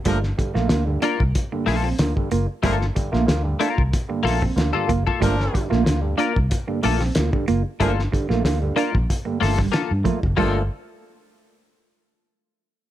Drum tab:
CC |----------------|----------------|----------------|----------------|
HH |x-x-x-x-x-o-x-x-|x-x-x-x-x-o-x-x-|x-x-x-x-x-o-x-x-|x-x-x-x-x-o-x-x-|
SD |-o-oo-----o-o---|-o-oo-----o-o---|-o-oo-----ooo---|-o-oo-----ooo---|
BD |o-o----oo----o--|o-o----oo--o--oo|o-o----oo----o--|o-o----oo--o--oo|

CC |x---------------|
HH |----------------|
SD |----------------|
BD |o---------------|